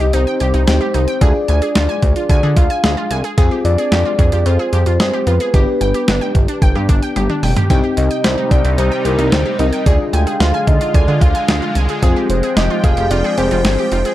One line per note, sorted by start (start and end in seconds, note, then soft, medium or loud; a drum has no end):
0.00 0.12 C2 loud
0.00 0.64 C4 medium
0.00 0.64 D#4 medium
0.00 0.12 G4 medium
0.00 0.64 G4 medium
0.00 0.15 D#5 loud
0.00 closed hi-hat medium
0.13 0.26 C2 loud
0.13 0.26 D#4 loud
0.13 0.67 C5 medium
0.13 closed hi-hat medium
0.27 0.39 G5 medium
0.40 0.53 C2 loud
0.40 0.53 G4 medium
0.40 closed hi-hat medium
0.54 0.66 C2 medium
0.54 0.66 D#4 medium
0.54 closed hi-hat medium
0.67 0.80 D2 loud
0.67 1.22 C4 medium
0.67 1.22 D#4 soft
0.67 1.22 G4 medium
0.67 1.23 C5 medium
0.67 0.80 G5 medium
0.67 snare loud
0.67 closed hi-hat medium
0.81 0.93 G4 medium
0.94 1.07 C2 medium
0.94 1.07 D#4 medium
0.94 closed hi-hat medium
1.08 1.20 G5 medium
1.08 closed hi-hat medium
1.21 1.34 D2 loud
1.21 3.34 D4 medium
1.21 3.34 F4 medium
1.21 1.34 G#4 loud
1.21 3.34 G#4 medium
1.21 2.29 D5 loud
1.21 kick loud
1.21 closed hi-hat medium
1.48 1.61 D2 loud
1.48 1.61 G#5 medium
1.48 closed hi-hat medium
1.62 1.74 G#4 medium
1.62 closed hi-hat medium
1.75 1.88 D2 loud
1.75 1.88 F4 medium
1.75 snare loud
1.75 closed hi-hat medium
1.89 2.01 G#5 medium
2.02 2.15 D2 loud
2.02 kick loud
2.02 closed hi-hat medium
2.16 2.28 F4 medium
2.16 closed hi-hat medium
2.29 2.42 D2 loud
2.29 2.58 D5 loud
2.29 2.42 G#5 loud
2.29 kick loud
2.29 closed hi-hat medium
2.43 2.55 D3 loud
2.43 2.56 G#4 medium
2.57 2.69 D2 loud
2.57 2.69 F4 medium
2.57 3.11 F5 loud
2.57 kick loud
2.57 closed hi-hat medium
2.70 2.83 G#5 medium
2.70 closed hi-hat medium
2.84 2.96 D2 medium
2.84 2.96 G#4 medium
2.84 snare loud
2.84 closed hi-hat medium
2.97 3.10 F4 medium
3.11 3.23 C2 medium
3.11 3.23 G#5 medium
3.11 closed hi-hat medium
3.24 3.37 G#4 medium
3.24 closed hi-hat medium
3.38 3.50 F2 loud
3.38 5.50 C4 medium
3.38 5.50 F4 medium
3.38 3.50 G#4 loud
3.38 5.50 G#4 medium
3.38 kick loud
3.38 closed hi-hat medium
3.51 3.64 G4 medium
3.65 3.77 F2 loud
3.65 4.48 D5 loud
3.65 closed hi-hat medium
3.78 3.91 G#4 medium
3.78 closed hi-hat medium
3.92 4.04 F2 loud
3.92 4.04 G4 loud
3.92 snare loud
3.92 closed hi-hat medium
4.05 4.18 F4 medium
4.19 4.31 F2 loud
4.19 4.31 G#4 medium
4.19 kick loud
4.19 closed hi-hat medium
4.32 4.45 F2 loud
4.32 4.45 G4 medium
4.32 closed hi-hat medium
4.46 4.58 F2 loud
4.46 4.58 F4 loud
4.46 4.99 C5 loud
4.46 closed hi-hat medium
4.59 4.72 G#4 medium
4.73 4.85 F2 loud
4.73 4.85 G4 medium
4.73 closed hi-hat medium
4.86 4.99 F2 medium
4.86 4.99 F4 medium
4.86 closed hi-hat medium
5.00 5.12 G2 medium
5.00 5.12 G#4 medium
5.00 5.28 C5 loud
5.00 snare loud
5.00 closed hi-hat medium
5.13 5.26 G4 medium
5.27 5.39 F2 loud
5.27 5.39 F4 medium
5.27 6.89 B4 loud
5.27 closed hi-hat medium
5.40 5.53 G#4 medium
5.40 closed hi-hat medium
5.54 5.66 G1 loud
5.54 7.66 B3 medium
5.54 7.66 D4 medium
5.54 7.66 G4 medium
5.54 5.66 G4 loud
5.54 kick loud
5.54 closed hi-hat medium
5.81 5.93 G1 loud
5.81 5.93 G5 medium
5.81 closed hi-hat medium
5.94 6.07 G4 medium
5.94 closed hi-hat medium
6.08 6.20 G1 loud
6.08 6.20 D4 medium
6.08 snare loud
6.08 closed hi-hat medium
6.21 6.34 G5 medium
6.35 6.47 G1 loud
6.35 kick loud
6.35 closed hi-hat medium
6.48 6.61 D4 medium
6.48 closed hi-hat medium
6.62 6.74 G1 loud
6.62 6.74 G5 loud
6.62 kick loud
6.62 closed hi-hat medium
6.75 6.88 G2 loud
6.75 6.88 G4 medium
6.89 7.01 G1 loud
6.89 7.01 D4 medium
6.89 kick loud
6.89 closed hi-hat medium
7.03 7.15 G5 medium
7.03 closed hi-hat medium
7.16 7.28 G1 medium
7.16 7.28 G4 medium
7.16 closed hi-hat medium
7.16 high tom medium
7.30 7.42 D4 medium
7.30 mid tom medium
7.43 7.55 F1 medium
7.43 7.56 G5 medium
7.43 mid tom loud
7.43 open hi-hat medium
7.56 7.69 G4 medium
7.56 closed hi-hat medium
7.56 floor tom loud
7.70 7.82 C2 loud
7.70 9.84 C3 medium
7.70 9.84 G3 medium
7.70 9.56 C4 medium
7.70 9.84 D#4 medium
7.70 9.56 D#4 medium
7.70 9.56 G4 medium
7.70 7.82 G5 loud
7.70 kick loud
7.70 closed hi-hat medium
7.84 7.96 G4 medium
7.97 8.09 C2 loud
7.97 8.26 D#5 medium
7.97 closed hi-hat medium
8.11 8.23 G5 medium
8.11 closed hi-hat medium
8.24 8.36 C2 loud
8.24 8.37 G4 loud
8.24 8.53 C5 medium
8.24 snare loud
8.24 closed hi-hat medium
8.38 8.50 D#4 medium
8.51 8.63 C2 loud
8.51 8.79 D5 loud
8.51 8.64 G5 medium
8.51 kick loud
8.51 closed hi-hat medium
8.64 8.77 C2 loud
8.64 8.77 G4 medium
8.64 closed hi-hat medium
8.78 8.90 C2 loud
8.78 8.91 D#4 loud
8.78 9.06 C5 loud
8.78 closed hi-hat medium
8.92 9.04 G5 medium
9.05 9.17 C2 loud
9.05 9.18 G4 medium
9.05 9.33 A#4 medium
9.05 closed hi-hat medium
9.18 9.31 C2 loud
9.18 9.31 D#4 medium
9.18 closed hi-hat medium
9.32 9.44 D2 loud
9.32 9.58 C5 loud
9.32 9.45 G5 medium
9.32 snare loud
9.32 closed hi-hat medium
9.46 9.58 G4 medium
9.59 9.71 C2 medium
9.59 9.86 C4 medium
9.59 9.72 D#4 medium
9.59 9.86 D#4 soft
9.59 9.86 A#4 medium
9.59 9.84 D#5 loud
9.59 closed hi-hat medium
9.73 9.85 G5 medium
9.73 closed hi-hat medium
9.86 9.98 D2 loud
9.86 12.00 D3 medium
9.86 14.14 G#3 medium
9.86 11.99 D4 medium
9.86 12.00 F4 loud
9.86 11.99 F4 medium
9.86 9.99 G#4 loud
9.86 11.99 G#4 medium
9.86 9.98 D5 loud
9.86 kick loud
9.86 closed hi-hat medium
10.13 10.25 D2 loud
10.13 10.42 G5 loud
10.13 10.26 G#5 medium
10.13 closed hi-hat medium
10.27 10.39 G#4 medium
10.27 closed hi-hat medium
10.40 10.53 D2 medium
10.40 10.53 F4 loud
10.40 10.68 F5 loud
10.40 snare loud
10.40 closed hi-hat medium
10.54 10.66 G#5 medium
10.67 10.80 D2 loud
10.67 10.96 D#5 loud
10.67 kick loud
10.67 closed hi-hat medium
10.81 10.93 F4 medium
10.81 closed hi-hat medium
10.94 11.07 D2 loud
10.94 11.23 D5 loud
10.94 11.07 G#5 loud
10.94 kick loud
10.94 closed hi-hat medium
11.08 11.20 D3 loud
11.08 11.20 G#4 medium
11.21 11.34 D2 loud
11.21 11.34 F4 medium
11.21 11.75 F5 loud
11.21 kick loud
11.21 closed hi-hat medium
11.35 11.47 G#5 medium
11.35 closed hi-hat medium
11.48 11.61 D2 loud
11.48 11.61 G#4 medium
11.48 snare loud
11.48 closed hi-hat medium
11.62 11.74 F4 medium
11.75 11.88 C2 medium
11.75 11.88 G#5 medium
11.75 closed hi-hat medium
11.89 12.02 G#4 medium
11.89 closed hi-hat medium
12.02 12.15 F1 loud
12.02 14.14 F3 medium
12.02 13.35 C4 medium
12.02 13.35 F4 medium
12.02 13.35 G#4 medium
12.02 12.15 G#4 loud
12.02 14.14 G5 medium
12.02 kick loud
12.02 closed hi-hat medium
12.16 12.29 G4 medium
12.29 12.42 F1 loud
12.29 12.55 C5 medium
12.29 closed hi-hat medium
12.43 12.56 G#4 medium
12.43 closed hi-hat medium
12.57 12.69 F1 loud
12.57 12.69 G4 loud
12.57 12.85 D#5 loud
12.57 snare loud
12.57 closed hi-hat medium
12.70 12.83 F4 medium
12.84 12.96 F1 loud
12.84 12.96 G#4 medium
12.84 13.12 F5 loud
12.84 kick loud
12.84 closed hi-hat medium
12.97 13.09 F1 loud
12.97 13.10 G4 medium
12.97 closed hi-hat medium
13.11 13.23 F1 loud
13.11 13.23 F4 loud
13.11 13.39 D5 loud
13.11 closed hi-hat medium
13.24 13.37 G#4 medium
13.38 13.50 F1 loud
13.38 14.14 C4 medium
13.38 14.14 F4 medium
13.38 13.50 G4 medium
13.38 14.14 G#4 medium
13.38 14.14 C5 loud
13.38 closed hi-hat medium
13.51 13.63 F1 loud
13.51 13.64 F4 medium
13.51 closed hi-hat medium
13.65 13.77 G1 loud
13.65 13.77 G#4 medium
13.65 snare loud
13.65 closed hi-hat medium
13.78 13.91 G4 medium
13.92 14.04 F1 medium
13.92 14.04 F4 medium
13.92 closed hi-hat medium
14.05 14.14 G#4 medium
14.05 closed hi-hat medium